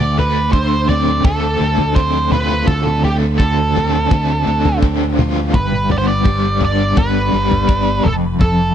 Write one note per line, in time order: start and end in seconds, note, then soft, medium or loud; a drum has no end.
0.00 1.21 D2 medium
0.00 1.61 D2 medium
0.00 0.19 D5 medium
0.00 mid tom medium
0.18 1.24 A3 medium
0.18 0.52 B4 medium
0.18 floor tom medium
0.52 1.59 D3 medium
0.52 0.89 C5 medium
0.52 kick medium
0.89 1.95 C4 medium
0.89 1.23 D5 medium
0.89 floor tom medium
1.24 1.58 D2 medium
1.24 3.03 A3 medium
1.24 1.99 A4 medium
1.24 kick loud
1.24 floor tom medium
1.60 2.64 D2 medium
1.60 3.39 D3 medium
1.78 floor tom medium
1.95 3.74 C4 medium
1.95 2.32 C5 medium
1.95 kick loud
2.32 4.12 F4 medium
2.32 2.66 B4 medium
2.32 floor tom medium
2.32 mid tom medium
2.67 4.07 D2 medium
2.67 4.47 D2 medium
2.67 3.04 A4 medium
2.67 kick medium
2.67 floor tom medium
2.86 mid tom medium
3.04 4.11 A3 medium
3.04 3.14 G4 medium
3.04 floor tom medium
3.38 4.46 D3 medium
3.38 4.78 A4 medium
3.38 kick medium
3.76 4.82 C4 medium
3.76 floor tom medium
4.11 4.44 D2 medium
4.11 5.58 A3 medium
4.11 kick loud
4.11 floor tom medium
4.47 5.56 D2 medium
4.47 5.54 D3 medium
4.65 floor tom medium
4.83 5.54 C4 medium
4.83 kick medium
5.19 5.54 F4 medium
5.19 floor tom medium
5.19 mid tom medium
5.54 6.93 G1 medium
5.54 7.33 G2 medium
5.54 5.88 B4 medium
5.54 kick loud
5.54 floor tom medium
5.72 mid tom medium
5.89 6.95 B3 medium
5.89 5.97 D5 medium
5.89 floor tom medium
5.98 6.05 C5 medium
6.08 6.59 D5 medium
6.24 7.31 G3 medium
6.24 kick medium
6.60 7.67 D4 medium
6.60 floor tom medium
6.65 6.96 D5 medium
6.96 7.30 G1 medium
6.96 8.04 B3 medium
6.96 8.08 B4 medium
6.96 kick loud
6.96 floor tom medium
7.32 8.01 G1 medium
7.32 8.04 G3 medium
7.51 floor tom medium
7.68 8.04 D4 medium
7.68 kick medium
8.03 8.74 F1 medium
8.03 8.38 F2 medium
8.03 8.13 A4 medium
8.03 floor tom medium
8.03 mid tom medium
8.39 8.74 F2 medium
8.39 8.74 A4 medium
8.39 kick loud
8.39 floor tom medium